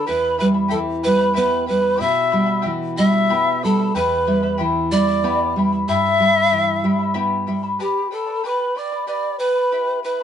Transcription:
0.07 E2 E4 G4 B4 E5 G5 B5
0.38 G3 E4 B4 E5 G5 B5
0.54 E4 E5 B5
0.68 E4 G4 A4 E5 G5 A5 B5
0.73 E3
1.02 E4 B4 E5 G5 B5
1.06 G3
1.18 E4 E5 B5
1.33 E4 G4 B4 E5 G5 B5
1.37 B3
1.66 G3 E4 B4 E5 G5 B5
1.81 E4 E5 B5
1.97 B2 E4 G4 E5 G5 B5 E6
2.31 G3 E4 E5 G5 B5
2.46 E4 E5 B5
2.62 E3 E4 G4 E5 G5 B5
2.96 G3 E4 E5 G5 B5 E6
3.13 E4 E5 B5
3.30 B3 E4 G4 E5 G5 B5
3.62 G3 E4 A4 E5 G5 A5 B5
3.78 E4 E5 B5
3.95 E2 E4 G4 B4 E5 G5 B5
4.27 G3 E4 E5 G5 B5
4.43 E4 E5 B5
4.57 E3 E4 G4 E5 G5 B5
4.91 G3 E4 D5 E5 G5 B5 D6
5.07 E4 E5 B5
5.24 B3 E4 G4 E5 G5 B5
5.56 G3 E4 E5 G5 B5
5.73 E4 E5 B5
5.88 G2 E4 G4 E5 G5 B5 E6
6.20 G3 E4 E5 G5 B5
6.35 E4 E5 B5
6.51 E3 E4 G4 E5 G5 B5
6.84 G3 E4 E5 G5 B5
6.99 E4 E5 B5
7.14 B3 E4 G4 E5 G5 B5
7.47 G3 E4 E5 G5 B5
7.63 E4 E5 B5
7.79 G4 B4 D5 G5 A5 B5
8.11 A4 B4 D5 G5 A5 B5
8.26 B4 D5 B5
8.43 G4 B4 D5 G5 B5 D6
8.49 B5
8.75 B4 D5 G5 B5 D6
8.92 B4 D5 B5
9.07 G4 B4 D5 G5 B5 D6
9.39 B4 D5 G5 B5
9.55 B4 D5 B5
9.72 E4 G4 E5 G5 B5
10.03 E4 B4 E5 G5 B5

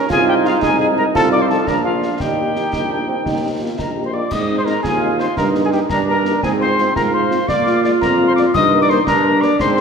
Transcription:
0.09 C2 G#3 D#4 F4 G#4 G#5, concert bass drum, snare, crash
0.26 G#3 D#4 G4 G5
0.44 G#3 D#4 F4 F5, snare
0.62 C2 D#4 G#4 G#5, concert bass drum, snare
0.79 G#3 D#4 G#4 G#5
0.96 G#3 D#4 A#4 A#5
1.14 C2 F3 F4 A4 A5, concert bass drum, snare
1.32 F3 D#4 F4 D5 D6
1.41 C5 C6
1.49 F3 D#4 F4 A4 A5, snare
1.67 A#1 D4 A#4 A#5, concert bass drum, snare
1.84 A#3 D4 F4 F5
2.03 A#3 D4 F4, snare
2.20 D#2 D#3 D#4 G4 G5, concert bass drum, snare
2.37 A#3 D#4
2.56 A#3 D#4, snare
2.73 A#1 D#4, concert bass drum, snare
2.91 A#3 D4 D#4
3.08 A#3 C4 D#4
3.26 D#2 D#4, concert bass drum, snare
3.43 A#3 D#4
3.61 A#3 D#4 F4
3.78 A#1 D#4 A#4 A#5, concert bass drum, snare
3.96 A#3 D#4 G4
4.05 C5 C6
4.12 A#3 D#4 F4 D5 D6
4.31 G#2 D#5 D#6, concert bass drum, snare, crash
4.50 C4 D#4
4.58 C5 C6
4.65 C4 D#4 A#4 A#5, snare
4.82 D#2 F4 G#4 G#5, concert bass drum, snare
5.02 C4 D#4
5.19 C4 D#4 C5 C6, snare
5.37 G2 D#4 A#4 A#5, concert bass drum, snare
5.54 A#3 D#4 G4, snare
5.64 G#4 G#5
5.72 A#3 D#4 G4 G5, snare
5.89 G2 D4 A#4 A#5, concert bass drum, snare
6.07 A#3 D#4 G4 A#4 A#5
6.25 A#3 D#4 G4, snare
6.43 G#2 C4 G#4 G#5, concert bass drum, snare
6.61 G#3 C4 F4 C5 C6
6.78 G#3 C4 F4, snare
6.95 G#2 F4 A#4 A#5, concert bass drum, snare
7.13 G#3 C4 F4 C5 C6
7.31 G#3 C4 F4, snare
7.48 A#2 F4 D5 D6, concert bass drum, snare
7.66 G#3 A#3 F4, snare
7.84 G#3 A#3 F4 D5 D6, snare
8.01 F2 A#4 A#5, concert bass drum, snare
8.19 G#3 A#3 F4
8.27 C5 C6
8.36 G#3 A#3 F4 D5 D6, snare
8.54 G2 D#4 D#5 D#6, concert bass drum, snare, crash
8.72 G3 A#3 A#4
8.81 D5 D6
8.90 G3 A#3 A#4 C5 C6, snare
9.07 G2 D4 A#4 A#5, concert bass drum, snare
9.25 G3 A#3 A#4
9.41 G3 A#3 A#4 D5 D6, snare
9.59 G#2 C4 C5 C6, concert bass drum, snare
9.77 D#4, snare

